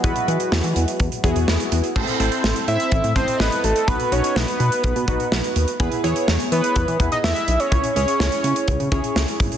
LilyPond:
<<
  \new Staff \with { instrumentName = "Analog synth lead" } { \time 4/4 \key e \major \tempo 4 = 125 r1 | r4. e''4 c''8 b'8 a'8 | b'8 cis''8 b'2 r4 | r4. b'4~ b'16 dis''16 e''8. cis''16~ |
cis''8 cis''2 r4. | }
  \new Staff \with { instrumentName = "Synth keys" } { \time 4/4 \key e \major <b e' fis' b'>2 r8 <b e' fis' gis'>4. | <c' e' a' c''>8 <c' e' a' c''>2 <c' e' a' dis''>4. | <b dis' fis' b'>8 <b dis' fis' b'>2 <b dis' fis' b'>4. | <b e' gis' b'>8 <b e' gis' cis''>2 <b e' gis' b'>4. |
<cis' e' gis' cis''>8 <cis' e' gis' cis''>2 <cis' e' gis' cis''>4. | }
  \new Staff \with { instrumentName = "French horn section" } { \clef bass \time 4/4 \key e \major <e fis gis b fis'>1 | r1 | r1 | r1 |
r1 | }
  \new Staff \with { instrumentName = "Analog synth bass" } { \clef bass \time 4/4 \key e \major e,16 r16 e16 r16 e,16 e16 e,16 r16 e,16 r16 e,16 e,16 e,16 r16 e,16 r16 | a,,16 r16 a,,16 r16 a,,16 r16 a,16 r16 a,,16 a,16 a,,16 r16 a,,16 r16 a,,16 r16 | b,,16 r16 b,,16 r16 b,,16 r16 b,16 r16 b,,16 b,16 b,,16 r16 b,,16 r16 dis,16 r16 | e,16 r16 e,16 r16 e,16 r16 e16 r16 e,16 e16 e,16 r16 e,16 r16 b,,16 r16 |
cis,16 r16 cis,16 r16 cis,16 r16 cis16 r16 cis,16 cis16 cis,16 r16 cis,16 r16 gis,,16 r16 | }
  \new DrumStaff \with { instrumentName = "Drums" } \drummode { \time 4/4 <hh bd>16 hh16 hh16 hh16 sn16 hh16 hh16 hh16 <hh bd>16 hh16 <hh bd>16 hh16 sn16 hh16 hh16 hh16 | <cymc bd>16 hh16 hh16 hh16 sn16 hh16 hh16 hh16 <hh bd>16 hh16 <hh bd>16 hh16 sn16 hh16 hh16 hh16 | <hh bd>16 hh16 hh16 hh16 sn16 hh16 hh16 hh16 <hh bd>16 hh16 <hh bd>16 hh16 sn16 hh16 hh16 hh16 | <hh bd>16 hh16 hh16 hh16 sn16 hh16 hh16 hh16 <hh bd>16 hh16 <hh bd>16 hh16 sn16 hh16 hh16 hh16 |
<hh bd>16 hh16 hh16 hh16 sn16 hh16 hh16 hh16 <hh bd>16 hh16 <hh bd>16 hh16 sn16 hh16 <hh bd>16 hh16 | }
>>